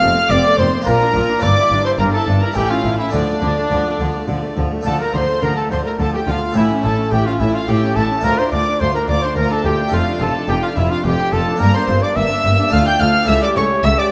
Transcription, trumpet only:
0.00 0.33 F5 loud
0.31 0.58 D5 loud
0.59 0.71 C5 medium
0.86 1.45 A#4 loud
1.43 1.84 D5 loud
1.85 1.91 C5 medium
1.99 2.12 A#4 medium
2.13 2.26 A4 medium
2.42 2.57 A#4 medium
2.56 2.72 G4 medium
2.71 2.98 F4 medium
2.99 3.15 E4 medium
3.13 4.57 D4 medium
4.85 5.01 A4 medium
5.00 5.13 A#4 medium
5.14 5.42 C5 medium
5.42 5.56 A#4 medium
5.56 5.71 A4 medium
5.71 5.85 C5 medium
5.85 6.01 A#4 medium
5.99 6.13 A4 medium
6.13 6.20 G4 medium
6.27 6.55 F4 medium
6.56 6.69 E4 medium
6.84 7.13 A4 medium
7.12 7.27 G4 medium
7.26 7.41 F4 medium
7.40 7.53 E4 medium
7.54 7.60 F4 medium
7.68 7.98 G4 medium
7.96 8.25 A4 medium
8.24 8.40 A#4 loud
8.38 8.51 C5 medium
8.52 8.81 D5 medium
8.80 8.93 C5 medium
8.94 9.08 A#4 medium
9.08 9.24 D5 medium
9.22 9.36 C5 medium
9.36 9.50 A#4 medium
9.50 9.64 A4 medium
9.64 9.77 G4 medium
9.93 10.05 F4 medium
10.21 10.33 A4 medium
10.48 10.55 G4 medium
10.62 10.69 F4 medium
10.77 10.91 E4 medium
10.90 11.06 F4 medium
11.04 11.34 G4 medium
11.32 11.61 A4 medium
11.60 11.74 A#4 medium
11.74 12.04 C5 medium
12.03 12.17 D5 medium
12.16 12.52 E5 loud
12.72 12.85 F5 medium
12.86 13.02 G5 medium
13.00 13.30 F5 loud
13.28 13.42 E5 loud
13.43 13.58 D5 medium
13.56 13.86 C#5 loud
13.85 14.00 E5 loud
13.99 14.12 D5 medium

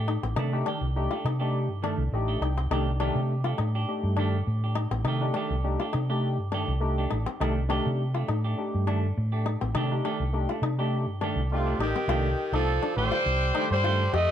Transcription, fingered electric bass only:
0.00 0.16 A2 medium
0.23 0.35 A1 medium
0.37 0.62 C3 medium
0.81 1.06 C2 medium
1.25 1.69 C3 medium
1.69 1.94 G2 medium
1.98 2.10 C2 medium
2.12 2.39 A1 medium
2.41 2.68 C2 medium
2.71 3.09 C2 medium
3.15 3.52 C3 medium
3.59 3.84 A2 medium
4.04 4.41 G2 medium
4.47 4.85 A2 loud
4.91 5.03 A1 medium
5.04 5.30 C3 medium
5.50 5.76 C2 medium
5.94 6.39 C3 medium
6.39 6.64 G2 medium
6.68 7.05 C2 medium
7.12 7.25 A1 medium
7.41 7.79 C2 medium
7.86 8.22 C3 medium
8.29 8.54 A2 medium
8.75 9.11 G2 medium
9.18 9.55 A2 medium
9.62 9.73 A1 medium
9.75 10.00 C3 medium
10.20 10.45 C2 medium
10.62 11.07 C3 medium
11.07 11.32 G2 medium
11.36 11.72 C2 medium
11.79 11.92 A1 medium
12.08 12.33 C2 medium
12.52 12.77 C2 loud
12.96 13.09 A1 medium
13.26 13.50 C2 loud
13.71 14.07 G2 medium
14.13 14.26 F2 medium

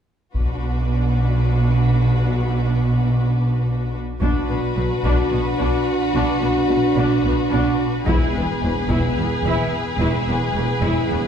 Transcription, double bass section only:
0.35 3.98 B1 soft
4.21 4.29 B1 soft
4.50 4.58 B1 soft
4.77 4.85 B1 soft
5.05 5.13 B1 medium
5.32 5.40 B1 soft
5.59 5.67 B1 soft
6.13 6.21 B1 soft
6.41 6.49 B1 soft
6.69 6.77 B1 soft
6.95 7.03 B1 soft
7.24 7.32 B1 soft
7.52 7.60 B1 soft
8.07 8.15 E1 medium
8.33 8.41 E1 soft
8.62 8.70 E1 soft
8.89 8.97 E1 medium
9.17 9.25 E1 soft
9.44 9.52 E1 medium
9.99 10.07 E1 medium
10.27 10.35 E1 soft
10.54 10.62 E1 soft
10.81 10.89 E1 medium
11.08 11.16 E1 soft

